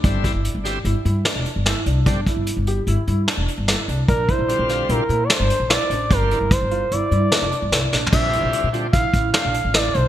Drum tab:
CC |------------------------------|------------------------------|------------------------------|------------------------------|
HH |x--x--x--x--x--x--x--x--x--x--|x--x--x--x--x--x--x--x--x--x--|x--x--x--x--x--x--x--x--x--x--|x--x--x--x--x--x--x--x--x-----|
SD |---------o--------o-----o-----|------------------o-----o-----|---------o--------o-----o-----|------------------o-----o--o--|
FT |------------------------------|------------------------------|------------------------------|-----------------------------o|
BD |o--o--------------------------|o--o--------------------------|o--o--------------------------|o-----o-----------------------|

CC |x-----------------------------|
HH |---x--x--x--x--x--x--x--x--x--|
SD |------------------o-----o-----|
FT |------------------------------|
BD |o-----------o--o--------------|